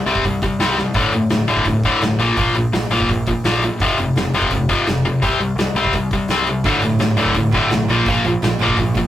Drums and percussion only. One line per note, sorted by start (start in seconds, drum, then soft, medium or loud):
0.07 open hi-hat medium
0.15 kick medium
0.24 kick medium
0.24 open hi-hat medium
0.42 kick medium
0.42 open hi-hat medium
0.60 snare loud
0.60 open hi-hat medium
0.78 snare medium
0.94 kick loud
0.94 open hi-hat medium
1.12 open hi-hat medium
1.30 snare loud
1.30 open hi-hat medium
1.47 open hi-hat soft
1.57 kick medium
1.65 kick medium
1.65 open hi-hat medium
1.83 kick medium
1.83 open hi-hat soft
2.01 snare medium
2.01 open hi-hat medium
2.19 open hi-hat soft
2.37 kick loud
2.37 open hi-hat medium
2.55 open hi-hat medium
2.73 snare loud
2.73 open hi-hat medium
2.91 open hi-hat medium
3.00 kick medium
3.09 kick medium
3.09 open hi-hat medium
3.27 kick medium
3.27 open hi-hat medium
3.44 snare loud
3.44 open hi-hat medium
3.62 open hi-hat medium
3.80 kick loud
3.80 open hi-hat medium
3.98 open hi-hat medium
4.16 snare loud
4.16 open hi-hat medium
4.34 open hi-hat medium
4.42 kick medium
4.50 kick medium
4.50 open hi-hat medium
4.69 kick medium
4.69 open hi-hat medium
4.87 snare loud
4.87 open hi-hat medium
5.05 open hi-hat soft
5.22 kick loud
5.22 open hi-hat medium
5.41 open hi-hat medium
5.58 snare loud
5.58 open hi-hat medium
5.75 open hi-hat soft
5.85 kick medium
5.93 kick medium
5.93 open hi-hat medium
6.11 kick medium
6.11 open hi-hat medium
6.28 snare medium
6.28 open hi-hat medium
6.47 open hi-hat medium
6.64 kick loud
6.64 open hi-hat medium
6.81 open hi-hat medium
6.99 snare loud
6.99 open hi-hat medium
7.17 open hi-hat medium
7.26 kick medium
7.34 kick medium
7.34 open hi-hat medium
7.52 kick medium
7.52 open hi-hat soft
7.70 snare loud
7.70 open hi-hat medium
7.89 open hi-hat medium
8.06 kick loud
8.06 open hi-hat medium
8.24 open hi-hat medium
8.42 snare loud
8.42 open hi-hat medium
8.59 open hi-hat medium
8.68 kick medium
8.77 kick medium
8.77 open hi-hat medium
8.95 kick medium
8.95 open hi-hat medium